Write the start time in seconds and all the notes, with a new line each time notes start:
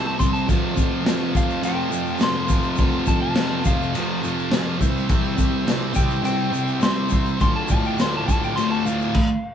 Already playing: C3 G3 C4 E4 G4 C5
0.07 A5
0.19 C3 G3 C4 C6, kick, snare, shaker
0.33 A5, shaker
0.47 F2 C3 F3 F4 A4 C5, kick, crash, shaker
0.76 F2 C3 F3, kick, shaker
1.04 F2 C3 F3, snare, crash, shaker
1.33 F2 C3 F3 F5, kick, shaker
1.50 shaker
1.62 F2 C3 F3 G5, crash, shaker
1.90 F2 C3 F3, shaker
2.06 shaker
2.18 F2 C3 F3, snare, crash, shaker
2.23 C6
2.48 F2 C3 F3, kick, snare, shaker
2.63 shaker
2.76 F2 C3 F3, kick, crash, shaker
3.06 F2 C3 F3 A5, kick, shaker
3.22 A5
3.35 F2 C3 F3, snare, crash, shaker
3.65 F2 C3 F3 F5, kick, shaker
3.81 shaker
3.93 F2 C3 F3, crash, shaker
4.22 F2 C3 F3, shaker
4.39 shaker
4.51 F2 C3 F3, snare, crash, shaker
4.79 C3 G3 C4 E4 G4 C5, kick, snare, shaker
4.96 shaker
5.08 C3 G3 C4, kick, crash, shaker
5.37 C3 G3 C4, kick, shaker
5.65 C3 G3 C4, snare, crash, shaker
5.93 C3 G3 C4 G5, kick, shaker
6.10 shaker
6.22 C3 G3 C4 G5, crash, shaker
6.51 C3 G3 C4, shaker
6.68 shaker
6.80 C3 G3 C4 C6, snare, crash, shaker
7.09 C3 G3 C4, kick, snare, shaker
7.26 shaker
7.39 D2 A2 D3 F4 A4 D5 C6, kick, crash, shaker
7.56 A5
7.68 D2 A2 D3 A5, kick, shaker
7.84 G5, shaker
7.98 D2 A2 D3 C6, snare, crash, shaker
8.17 A5
8.28 D2 A2 D3 A5, kick, shaker
8.43 G5, shaker
8.56 D2 A2 D3 C6, crash, shaker
8.72 A5
8.85 D2 A2 D3 F5, shaker
9.01 shaker
9.15 kick, crash